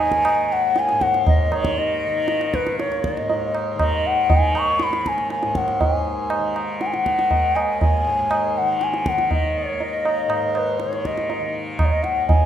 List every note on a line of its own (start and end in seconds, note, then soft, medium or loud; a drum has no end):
0.00 0.34 D#2 medium
0.00 0.92 G#2 medium
0.00 1.50 D#3 medium
0.00 0.54 G#5 loud
0.12 tabla ke medium
0.25 tabla na medium
0.34 2.63 D#2 medium
0.52 0.80 F#5 medium
0.76 1.03 G#5 loud
0.76 tabla te medium
0.89 3.20 G#2 medium
0.89 tabla te medium
1.01 1.27 F#5 loud
1.01 tabla ke medium
1.14 tabla te medium
1.27 1.55 D#5 medium
1.27 tabla tin medium
1.27 tabla ge medium
1.50 2.07 D#3 medium
1.50 1.80 C#5 medium
1.50 tabla na medium
1.65 tabla ke medium
1.77 2.56 D#5 loud
1.77 tabla tin medium
2.07 3.75 D#3 medium
2.28 tabla te medium
2.41 tabla te medium
2.54 2.78 B4 medium
2.54 tabla ke medium
2.63 4.88 D#2 medium
2.63 tabla te medium
2.79 3.06 C#5 medium
2.79 tabla te medium
2.92 tabla te medium
3.04 3.55 D#5 medium
3.04 tabla ke medium
3.17 5.43 G#2 medium
3.17 tabla te medium
3.30 tabla tin medium
3.55 tabla na medium
3.75 4.32 D#3 medium
3.79 4.08 D#5 medium
3.79 tabla na medium
3.79 tabla ge medium
4.06 4.33 F#5 medium
4.30 6.38 D#3 medium
4.30 4.59 G#5 medium
4.30 tabla tin medium
4.30 tabla ge medium
4.55 4.85 C#6 loud
4.55 tabla na medium
4.79 5.09 B5 loud
4.79 tabla te medium
4.89 7.51 D#2 medium
4.93 tabla te medium
5.06 5.31 G#5 medium
5.06 tabla ke medium
5.18 tabla te medium
5.30 5.58 G#5 medium
5.30 tabla te medium
5.43 5.81 G#2 medium
5.43 tabla te medium
5.55 5.83 F#5 medium
5.55 tabla ke medium
5.68 tabla te medium
5.81 8.06 G#2 medium
5.81 6.57 G#5 medium
5.81 tabla tin medium
5.81 tabla ge medium
6.30 tabla na medium
6.38 6.95 D#3 medium
6.56 tabla na medium
6.81 6.88 F#5 medium
6.81 tabla te medium
6.86 6.94 G#5 medium
6.93 8.61 D#3 medium
6.93 7.57 F#5 loud
6.93 tabla te medium
7.06 tabla ke medium
7.19 tabla te medium
7.31 tabla tin medium
7.31 tabla ge medium
7.51 9.71 D#2 medium
7.56 7.81 G#5 medium
7.56 tabla na medium
7.81 8.59 G#5 loud
7.81 tabla tin medium
7.81 tabla ge medium
8.06 10.27 G#2 medium
8.31 tabla na medium
8.58 9.17 D#3 medium
8.58 8.85 F#5 medium
8.81 9.10 G#5 medium
8.81 tabla te medium
8.94 tabla te medium
9.06 9.33 F#5 medium
9.06 tabla ke medium
9.17 10.86 D#3 medium
9.17 tabla te medium
9.31 9.60 D#5 medium
9.31 tabla tin medium
9.31 tabla ge medium
9.59 9.84 C#5 medium
9.72 11.93 D#2 medium
9.80 10.59 D#5 medium
9.80 tabla tin medium
10.05 tabla na medium
10.28 12.46 G#2 medium
10.28 tabla na medium
10.55 10.81 B4 medium
10.55 tabla na medium
10.80 11.08 C#5 medium
10.80 tabla te medium
10.86 11.39 D#3 medium
10.93 tabla te medium
11.05 11.56 D#5 medium
11.05 tabla ke medium
11.18 tabla te medium
11.30 tabla tin medium
11.39 12.46 D#3 medium
11.79 11.87 D#5 medium
11.79 tabla na medium
11.79 tabla ge medium
11.85 11.93 C#5 medium
11.92 12.46 D#2 medium
11.92 12.05 D#5 medium
12.03 12.28 F#5 medium
12.03 tabla te medium
12.28 12.46 G#5 medium
12.28 tabla tin medium
12.28 tabla ge medium